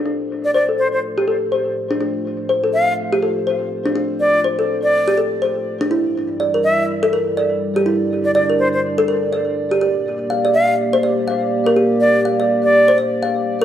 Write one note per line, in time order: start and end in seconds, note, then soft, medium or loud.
0.00 5.87 A3 medium
0.00 5.87 F4 medium
0.00 1.97 D5 medium
0.06 0.19 D4 medium
0.44 0.51 D5 medium
0.54 0.67 C5 medium
0.54 0.63 D5 medium
0.69 0.78 A4 medium
0.78 0.88 C5 medium
0.93 0.99 C5 medium
1.18 1.27 G4 medium
1.28 1.35 A4 medium
1.52 1.65 C5 medium
1.91 1.99 D4 medium
2.01 2.14 D4 medium
2.01 5.87 C5 medium
2.49 2.62 C5 medium
2.64 2.73 A4 medium
2.74 2.94 F5 medium
3.13 3.22 G4 medium
3.23 3.30 A4 medium
3.47 3.60 C5 medium
3.86 3.94 D4 medium
3.96 4.09 D4 medium
4.20 4.40 D5 medium
4.44 4.57 C5 medium
4.59 4.68 A4 medium
4.83 5.18 D5 medium
5.08 5.17 G4 medium
5.18 5.25 A4 medium
5.42 5.55 C5 medium
5.81 5.90 D4 medium
5.91 9.77 G3 medium
5.91 7.84 E4 medium
5.91 6.05 E4 medium
5.91 13.65 D5 medium
6.40 6.53 D5 medium
6.54 6.64 A#4 medium
6.64 6.84 E5 medium
7.03 7.12 A4 medium
7.13 7.21 A#4 medium
7.37 7.50 D5 medium
7.76 7.85 G4 medium
7.86 9.79 D4 medium
7.86 8.00 E4 medium
8.25 8.31 D5 medium
8.35 8.44 D5 medium
8.35 8.48 D5 medium
8.50 8.59 A#4 medium
8.59 8.68 C5 medium
8.74 8.80 C5 medium
8.98 9.07 A4 medium
9.08 9.16 A#4 medium
9.33 9.45 D5 medium
9.71 9.80 G4 medium
9.81 13.65 A#3 medium
9.81 13.65 G4 medium
9.81 9.95 G4 medium
10.30 10.43 F5 medium
10.45 10.54 D5 medium
10.54 10.74 F5 medium
10.93 11.02 C5 medium
11.03 11.11 D5 medium
11.28 11.41 F5 medium
11.66 11.75 A#4 medium
11.76 11.90 G4 medium
12.01 12.20 D5 medium
12.25 12.38 F5 medium
12.40 12.49 D5 medium
12.64 12.98 D5 medium
12.88 12.97 C5 medium
12.98 13.06 D5 medium
13.23 13.36 F5 medium
13.62 13.65 A#4 medium